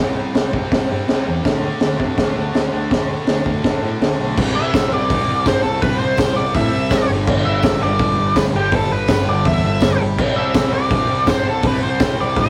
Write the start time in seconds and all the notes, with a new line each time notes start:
Already playing: C3
0.00 C2 G3 C4
0.15 C4
0.20 G3
0.33 C2 C3 G3, snare, open hi-hat
0.38 C4
0.53 C2 G3 C4, kick
0.57 C3
0.71 C2 C3 G3, kick, snare, open hi-hat
0.76 C4
0.90 G2 C3 G3 C4
1.08 C2 C3 G3, snare, open hi-hat
1.12 C4
1.25 E2 C4
1.30 G3
1.43 D2 D3 A3, kick, snare, open hi-hat
1.48 D4
1.63 D4
1.68 A3
1.80 D2 D3 A3, snare, open hi-hat
1.86 D4
1.98 C3 A3 D4, kick
2.02 D3
2.17 D2 D3 A3, kick, snare, open hi-hat
2.22 D4
2.36 D2 A3 D4
2.40 D3
2.54 D2 D3 A3, snare, open hi-hat
2.59 D4
2.72 D2 D4
2.76 A3
2.90 D2 D3 A3, kick, snare, open hi-hat
2.94 D4
3.08 D4
3.14 A3
3.26 D2 D3 A3, snare, open hi-hat
3.31 D4
3.46 D2 A3 D4, kick
3.50 D3
3.63 D2 D3 A3, kick, snare, open hi-hat
3.68 D4
3.82 A2 A3 D4
3.86 D3
4.01 D2 D3 A3, snare, open hi-hat
4.05 D4
4.18 B1 D4
4.22 A3
4.37 C2 C3 G3, kick, crash
4.43 C4
4.55 C2 E5
4.74 C2, kick, snare, open hi-hat, tambourine
4.92 C2 D5
5.10 C2 C3 G3, kick, open hi-hat
5.15 C4
5.28 C2
5.46 G2 C5, kick, snare, open hi-hat, tambourine
5.63 C2 A4
5.80 C2 C3 G3 B4, kick, open hi-hat
5.86 C4
5.99 C2 C5
6.17 C2, kick, snare, open hi-hat, tambourine
6.36 C2 D5
6.54 A2 C3 G3 E5, kick, open hi-hat
6.59 C4
6.73 C2
6.91 C2, kick, snare, open hi-hat, tambourine
7.08 G1 G2 D3
7.14 G3
7.27 G1, kick, crash
7.45 G1 E5
7.63 G1, kick, snare, open hi-hat, tambourine
7.81 G1 D3 G3 D5
7.86 G2
7.99 G1, kick, open hi-hat
8.18 G1
8.36 D2 B4, kick, snare, open hi-hat, tambourine
8.52 G1 G2 D3 G4
8.57 G3
8.72 G1 A4, kick, open hi-hat
8.91 G1 B4
9.08 G1, kick, snare, open hi-hat, tambourine
9.25 G1 D3 G3 D5
9.30 G2
9.45 E2 E5, kick, open hi-hat
9.65 G1
9.80 G1, kick, snare, open hi-hat, tambourine
10.01 G1
10.18 C2 C3 G3, kick, crash
10.23 C4
10.36 C2 E5
10.54 C2, kick, snare, open hi-hat, tambourine
10.73 C2 D5
10.91 C2 C3 G3, kick, open hi-hat
10.96 C4
11.09 C2
11.27 G2 C5, kick, snare, open hi-hat, tambourine
11.47 C2 A4
11.62 C2 C3 G3, kick, open hi-hat
11.67 C4 B4
11.83 C2 C5
12.00 C2, kick, snare, open hi-hat, tambourine
12.20 C2 D5
12.36 A2 C3 G3, kick, open hi-hat
12.41 C4 E5